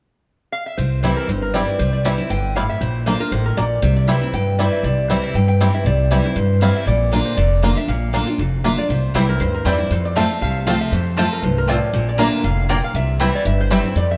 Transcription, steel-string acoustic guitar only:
0.78 1.27 C3 medium
1.03 1.28 E3 medium
1.03 1.28 G3 medium
1.03 1.28 C4 medium
1.03 1.28 E4 loud
1.29 1.77 G2 medium
1.54 1.67 E3 medium
1.54 1.67 G3 medium
1.54 1.67 C4 loud
1.54 1.66 E4 medium
1.68 1.80 C4 soft
1.68 1.79 E4 medium
1.79 2.28 C3 medium
2.04 2.18 E3 medium
2.04 2.18 G3 medium
2.04 2.18 C4 medium
2.04 2.17 E4 loud
2.18 2.30 C4 medium
2.18 2.29 E4 medium
2.30 2.54 D3 medium
2.56 2.80 A2 medium
2.81 3.30 A#2 medium
3.06 3.19 D3 medium
3.06 3.20 A#3 medium
3.06 3.20 D4 medium
3.06 3.19 F4 medium
3.20 3.32 D4 medium
3.20 3.31 F4 medium
3.32 3.56 A2 medium
3.57 3.81 A#2 medium
3.82 4.31 C3 medium
4.07 4.21 E3 medium
4.07 4.21 G3 medium
4.07 4.21 C4 medium
4.07 4.20 E4 loud
4.21 4.33 C4 medium
4.21 4.33 E4 medium
4.34 4.82 G2 medium
4.59 4.83 E3 medium
4.59 4.83 G3 medium
4.59 4.83 C4 medium
4.59 4.83 E4 medium
4.84 5.32 C3 medium
5.10 5.34 E3 medium
5.10 5.34 G3 medium
5.10 5.34 C4 medium
5.10 5.34 E4 loud
5.35 5.83 G2 medium
5.60 5.73 E3 medium
5.60 5.73 G3 medium
5.60 5.74 C4 medium
5.60 5.73 E4 loud
5.74 5.86 C4 medium
5.74 5.85 E4 medium
5.86 6.34 C3 medium
6.11 6.24 E3 medium
6.11 6.24 G3 medium
6.11 6.24 C4 loud
6.11 6.23 E4 loud
6.24 6.36 C4 medium
6.24 6.35 E4 medium
6.36 6.84 G2 medium
6.61 6.85 E3 medium
6.61 6.86 G3 medium
6.61 6.86 C4 medium
6.61 6.86 E4 loud
6.87 7.35 A#2 medium
7.12 7.36 D3 medium
7.12 7.36 A#3 loud
7.12 7.37 D4 medium
7.12 7.37 F4 loud
7.38 7.86 F2 medium
7.62 7.76 D3 medium
7.62 7.76 A#3 medium
7.62 7.76 D4 medium
7.62 7.75 F4 medium
7.76 7.88 D4 soft
7.76 7.88 F4 medium
7.88 8.37 A#2 medium
8.13 8.26 D3 medium
8.13 8.27 A#3 medium
8.13 8.27 D4 loud
8.13 8.26 F4 loud
8.27 8.39 D4 medium
8.27 8.38 F4 medium
8.39 8.87 F2 medium
8.64 8.77 D3 medium
8.64 8.78 A#3 medium
8.64 8.78 D4 medium
8.64 8.76 F4 medium
8.78 8.90 D4 soft
8.78 8.89 F4 medium
8.90 9.38 C3 medium
9.15 9.28 E3 medium
9.15 9.28 G3 medium
9.15 9.28 C4 medium
9.15 9.27 E4 loud
9.28 9.40 C4 soft
9.28 9.40 E4 medium
9.40 9.88 G2 medium
9.65 9.79 E3 medium
9.65 9.79 G3 medium
9.65 9.79 C4 medium
9.65 9.77 E4 medium
9.78 9.91 C4 soft
9.78 9.90 E4 medium
9.91 10.39 F2 medium
10.16 10.29 F3 medium
10.16 10.30 A3 medium
10.16 10.30 C4 loud
10.16 10.29 F4 medium
10.30 10.42 C4 soft
10.30 10.41 F4 medium
10.41 10.90 C3 medium
10.67 10.91 F3 medium
10.67 10.91 A3 loud
10.67 10.91 C4 loud
10.67 10.92 F4 medium
10.93 11.41 F2 medium
11.17 11.42 F3 medium
11.17 11.42 A3 medium
11.17 11.42 C4 loud
11.17 11.42 F4 loud
11.43 11.67 G2 medium
11.69 11.93 A2 medium
11.93 12.42 A#2 medium
12.18 12.42 D3 medium
12.18 12.43 A#3 medium
12.18 12.43 D4 medium
12.18 12.43 F4 medium
12.44 12.68 A2 medium
12.69 12.94 A#2 medium
12.95 13.43 C3 medium
13.20 13.44 E3 medium
13.20 13.44 G3 medium
13.20 13.44 C4 loud
13.20 13.45 E4 medium
13.45 13.94 G2 medium
13.70 13.83 E3 medium
13.70 13.84 G3 medium
13.70 13.84 C4 loud
13.70 13.83 E4 loud
13.84 13.96 C4 medium
13.84 13.95 E4 medium
13.96 14.17 F2 medium

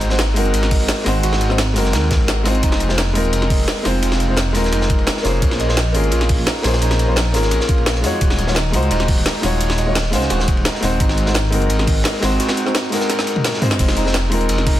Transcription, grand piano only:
0.09 0.19 G#3 medium
0.09 0.19 C4 medium
0.09 0.19 D#4 medium
0.09 0.19 F#4 medium
0.09 0.20 C5 medium
0.34 1.02 G#3 loud
0.34 1.03 C4 medium
0.34 1.04 D#4 medium
0.34 1.05 F#4 medium
0.38 1.05 A#4 loud
1.04 1.47 G#3 loud
1.04 1.47 C4 medium
1.04 1.48 D#4 medium
1.04 1.49 F#4 medium
1.08 1.49 C5 loud
1.49 1.58 G#3 medium
1.49 1.58 C4 medium
1.49 1.59 D#4 medium
1.49 1.59 F#4 medium
1.49 1.59 C5 medium
1.74 2.42 G#3 medium
1.74 2.43 C4 medium
1.74 2.44 D#4 medium
1.74 2.44 F#4 medium
1.78 2.45 A#4 loud
2.43 2.86 G#3 loud
2.43 2.87 C4 medium
2.43 2.87 D#4 medium
2.43 2.88 F4 medium
2.48 2.89 C5 loud
2.89 2.98 G#3 medium
2.89 2.98 C4 medium
2.89 2.98 D#4 medium
2.89 2.99 F4 medium
2.89 2.99 C5 medium
3.13 3.81 G#3 loud
3.13 3.83 C4 medium
3.13 3.83 D#4 medium
3.13 3.84 F4 medium
3.18 3.84 A#4 loud
3.83 4.26 G#3 loud
3.83 4.26 C4 medium
3.83 4.27 D#4 medium
3.83 4.28 F4 medium
3.87 4.28 C5 loud
4.28 4.37 G#3 medium
4.28 4.38 C4 medium
4.28 4.38 D#4 medium
4.28 4.38 F4 medium
4.28 4.38 C5 medium
4.53 5.22 G#3 loud
4.53 5.22 C4 medium
4.53 5.23 D#4 medium
4.53 5.23 F4 medium
4.57 5.24 A#4 loud
5.23 5.66 A#3 loud
5.23 5.66 C#4 medium
5.23 5.67 F4 medium
5.23 5.67 G#4 medium
5.27 5.68 C5 loud
5.68 5.77 A#3 medium
5.68 5.77 C#4 medium
5.68 5.77 F4 medium
5.68 5.78 G#4 medium
5.68 5.78 C5 medium
5.92 6.61 A#3 medium
5.92 6.62 C#4 medium
5.92 6.62 F4 medium
5.92 6.63 G#4 medium
5.97 6.63 A#4 loud
6.62 7.05 A#3 loud
6.62 7.06 C#4 medium
6.62 7.06 F4 medium
6.62 7.07 G#4 medium
6.67 7.07 C5 loud
7.07 7.16 A#3 medium
7.07 7.17 C#4 medium
7.07 7.17 F4 medium
7.07 7.17 G#4 medium
7.07 7.17 C5 medium
7.32 8.01 A#3 medium
7.32 8.01 C#4 medium
7.32 8.02 F4 medium
7.32 8.02 G#4 medium
7.36 8.03 A#4 loud
8.02 8.45 G#3 medium
8.02 8.45 D#4 medium
8.02 8.46 F4 medium
8.02 8.46 F#4 medium
8.06 8.47 C#5 loud
8.47 8.56 G#3 medium
8.47 8.56 D#4 medium
8.47 8.56 F4 medium
8.47 8.57 F#4 medium
8.47 8.57 C#5 medium
8.72 9.39 G#3 loud
8.72 9.41 D#4 medium
8.72 9.42 F4 medium
8.72 9.42 F#4 medium
8.76 9.43 C5 loud
9.41 9.84 G#3 loud
9.41 9.85 D#4 medium
9.41 9.85 F4 medium
9.41 9.86 F#4 medium
9.45 9.86 C#5 loud
9.86 9.95 G#3 medium
9.86 9.96 D#4 medium
9.86 9.96 F4 medium
9.86 9.96 F#4 medium
9.86 9.96 C#5 medium
10.11 10.79 G#3 loud
10.11 10.80 D#4 medium
10.11 10.81 F#4 medium
10.11 10.81 F5 medium
10.15 10.82 C5 loud
10.81 11.24 G#3 loud
10.81 11.24 C4 medium
10.81 11.25 D#4 medium
10.81 11.25 F#4 medium
10.85 11.26 C5 loud
11.26 11.35 G#3 medium
11.26 11.35 C4 medium
11.26 11.35 D#4 medium
11.26 11.36 F#4 medium
11.26 11.36 C5 medium
11.50 12.18 G#3 loud
11.50 12.20 C4 medium
11.50 12.20 D#4 medium
11.50 12.21 F#4 medium
11.55 12.21 A#4 loud
12.20 12.63 G#3 loud
12.20 12.64 C4 medium
12.20 12.64 D#4 medium
12.20 12.65 F#4 medium
12.24 12.65 C5 loud
12.65 12.74 G#3 medium
12.65 12.75 C4 medium
12.65 12.75 D#4 medium
12.65 12.75 F#4 medium
12.65 12.75 C5 medium
12.90 13.59 G#3 medium
12.90 13.59 C4 medium
12.90 13.60 D#4 medium
12.90 13.61 F#4 medium
12.94 13.61 A#4 loud
13.61 13.77 G#3 loud
13.61 13.77 C4 medium
13.61 13.78 D#4 medium
13.61 13.78 F4 medium
13.61 13.79 C5 loud
13.78 14.02 G#3 medium
13.78 14.02 C4 medium
13.78 14.02 D#4 medium
13.78 14.03 F4 medium
13.78 14.03 C5 loud
14.05 14.14 G#3 medium
14.05 14.14 C4 medium
14.05 14.15 D#4 medium
14.05 14.15 F4 medium
14.05 14.15 C5 medium
14.30 14.80 G#3 loud
14.30 14.80 C4 medium
14.30 14.80 D#4 medium
14.30 14.80 F4 medium
14.34 14.80 A#4 loud

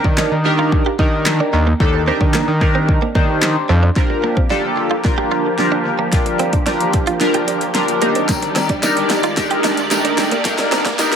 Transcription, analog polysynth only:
0.00 0.34 D4 medium
0.00 0.34 D#4 medium
0.00 0.34 G4 medium
0.00 0.34 A#4 loud
0.45 0.88 D4 loud
0.45 0.88 D#4 medium
0.45 0.89 G4 loud
0.45 0.89 A#4 loud
0.99 1.64 D4 medium
0.99 1.64 D#4 medium
0.99 1.64 G4 medium
0.99 1.64 A#4 loud
1.80 2.02 D4 loud
1.80 2.02 D#4 loud
1.80 2.02 G4 loud
1.80 2.02 A4 loud
2.07 2.51 D4 medium
2.07 2.51 D#4 medium
2.07 2.51 G4 medium
2.07 2.51 A#4 loud
2.61 3.05 D4 loud
2.61 3.05 D#4 medium
2.61 3.05 G4 medium
2.61 3.05 A#4 loud
3.15 3.80 D4 medium
3.15 3.80 D#4 medium
3.15 3.81 G4 medium
3.15 3.81 C5 loud
3.96 4.40 D4 medium
3.96 4.40 F4 medium
3.96 4.40 G4 medium
3.96 4.40 A#4 medium
4.50 4.94 D4 medium
4.50 4.94 F4 medium
4.50 4.94 G4 medium
4.50 4.94 A4 loud
5.04 5.48 D4 medium
5.04 5.48 F4 medium
5.04 5.48 G4 medium
5.04 5.48 A#4 loud
5.58 6.02 D4 medium
5.58 6.02 F4 medium
5.58 6.02 G4 medium
5.58 6.02 A#4 loud
6.13 6.56 D4 medium
6.13 6.56 F4 medium
6.13 6.56 G4 medium
6.13 6.56 A#4 medium
6.67 7.10 D4 medium
6.67 7.10 F4 medium
6.67 7.10 G4 medium
6.67 7.10 A#4 medium
7.21 7.64 D4 medium
7.21 7.64 F4 medium
7.21 7.64 G4 medium
7.21 7.64 A#4 loud
7.75 8.00 D4 medium
7.75 8.02 F4 medium
7.75 8.01 G4 medium
7.75 8.01 A#4 medium
8.02 8.67 D4 medium
8.02 8.67 D#4 medium
8.02 8.67 G4 medium
8.02 8.67 A#4 loud
8.83 9.26 D4 medium
8.83 9.26 D#4 medium
8.83 9.26 G4 medium
8.83 9.26 A#4 loud
9.37 9.80 D4 medium
9.37 9.80 D#4 medium
9.37 9.80 G4 medium
9.37 9.80 A#4 loud
9.91 10.34 D4 medium
9.91 10.34 D#4 medium
9.91 10.35 G4 medium
9.91 10.35 A#4 loud
10.45 10.88 D4 medium
10.45 10.88 D#4 medium
10.45 10.89 G4 medium
10.45 10.89 A#4 loud
10.99 11.16 D4 medium
10.99 11.16 D#4 medium
10.99 11.16 G4 medium
10.99 11.16 A#4 medium

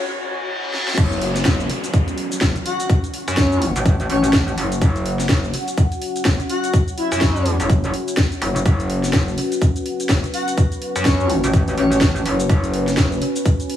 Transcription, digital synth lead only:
2.66 2.85 F#4 medium
3.38 3.47 C#4 medium
3.52 3.58 C#4 medium
4.09 4.19 C#4 medium
4.24 4.30 C#4 medium
6.50 6.69 F#4 medium
6.98 7.46 E4 loud
10.33 10.53 F#4 medium
11.06 11.15 C#4 medium
11.20 11.26 C#4 medium
11.77 11.87 C#4 medium
11.92 11.98 C#4 medium

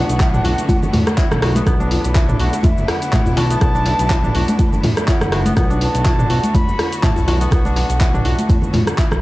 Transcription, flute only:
0.00 1.42 F#5 loud
2.40 2.62 F#5 medium
2.64 2.90 E5 loud
2.89 3.39 F#5 loud
3.37 4.84 A5 loud
5.08 5.54 F#5 medium
5.57 5.80 F#5 medium
5.82 6.56 A5 loud
6.55 7.04 B5 loud
7.03 7.53 A5 loud
7.52 7.75 F#5 medium
7.76 8.45 F#5 medium

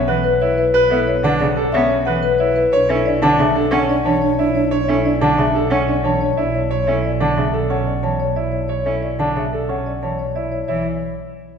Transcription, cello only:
0.08 0.20 E3 medium
0.90 1.03 B3 medium
1.24 1.36 D3 medium
1.41 1.53 C#3 medium
1.74 1.86 B3 loud
2.07 2.19 E3 medium
2.89 3.02 C#4 medium
3.22 3.35 D3 loud
3.39 3.51 C#3 medium
3.71 3.84 C#4 medium
4.05 4.18 E3 medium
4.89 5.01 C#4 medium
5.21 5.34 D3 medium
5.38 5.50 C#3 medium
5.70 5.83 C#4 medium
6.03 6.16 E3 medium
6.87 6.99 C#4 medium
7.21 7.33 D3 medium
7.37 7.49 C#3 medium
8.03 8.15 E3 medium
8.86 8.98 C#4 medium
9.19 9.31 D3 medium
9.36 9.48 C#3 medium
10.02 10.14 E3 soft
10.68 10.84 E3 medium

